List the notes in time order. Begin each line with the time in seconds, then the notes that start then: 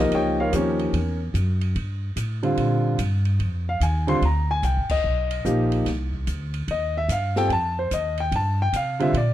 Already playing: C2 F3 A#3 D#4 G4
0.00 A#4 D#5
0.11 C#2 G4 C#5 D#5 G5, ride
0.40 F4 A#4 C#5 F5
0.52 D#2 F3 A#3 D#4 G4 A#4 C#5, hi-hat pedal, ride
0.56 C#4
0.79 ride
0.93 E2, ride
1.34 F#2, hi-hat pedal, ride
1.61 ride
1.76 G2, ride
2.16 A2, hi-hat pedal, ride
2.43 D3 G3 C4 F4, ride
2.57 A#2, ride
2.98 G2, hi-hat pedal, ride
3.25 ride
3.39 F2, ride
3.69 F5
3.80 D#2 G#5, hi-hat pedal, ride
4.07 D3 G3 C4 F4 C6, ride
4.22 D2 A#5, ride
4.51 G#5
4.62 C2 G5, hi-hat pedal, ride
4.77 G#1
4.89 F1 D#5, kick, crash
5.04 B1
5.31 ride
5.45 A#1 F3 A#3 D#4 G4, hi-hat pedal
5.72 ride
5.86 C2, snare, ride
6.13 kick
6.27 D2, hi-hat pedal, ride
6.54 ride
6.68 D#2 D#5, ride
6.97 E5
7.08 G2 F5, hi-hat pedal, ride
7.36 G3 C4 F4 A4 G5, snare
7.48 F2 G#5, ride
7.53 A5
7.79 C5
7.91 D#2 D#5, hi-hat pedal, ride
8.18 G5, ride
8.32 G2, ride
8.36 A5
8.62 G5
8.73 C3 F5, hi-hat pedal, ride
9.00 D3 G3 C4 F4 E5, ride
9.13 A#2 D5, ride